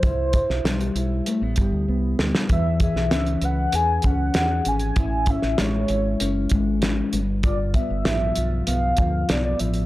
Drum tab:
HH |x-x-xxx-x-x-----|x-x-xxx-x-x-x-xx|x-x-x-x-x-x-x-x-|x-x-x-x-x-x-x-xx|
SD |---oo---------oo|---oo-------o---|---oo-------o---|----o-------o---|
BD |o-o-------o-----|o-o-------o-----|o-o-------o-----|o-o-------o-----|